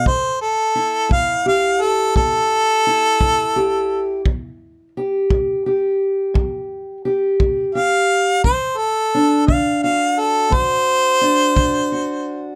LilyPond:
<<
  \new Staff \with { instrumentName = "Harmonica" } { \time 12/8 \key a \dorian \tempo 4. = 57 c''8 a'4 f''8 f''8 a'8 a'2. | r1 r4 f''4 | c''8 a'4 f''8 f''8 a'8 c''2. | }
  \new Staff \with { instrumentName = "Steel-string acoustic guitar" } { \clef bass \time 12/8 \key a \dorian << { r4 e'4 g'2 e'4 g'4 | r4 g'4 g'2 g'4 g'4 | r4 d'4 fis'2 d'4 fis'4 | } \\ { a,4 r8 a,4 r8 a,4 r8 a,4 r8 | a,4 r8 a,4 r8 a,4 r8 a,4 r8 | d4 r8 d4 r8 d4 r8 d4 r8 | } >> }
  \new DrumStaff \with { instrumentName = "Drums" } \drummode { \time 12/8 bd4. bd4. bd4. bd4. | bd4. bd4. bd4. bd4. | bd4. bd4. bd4. bd4. | }
>>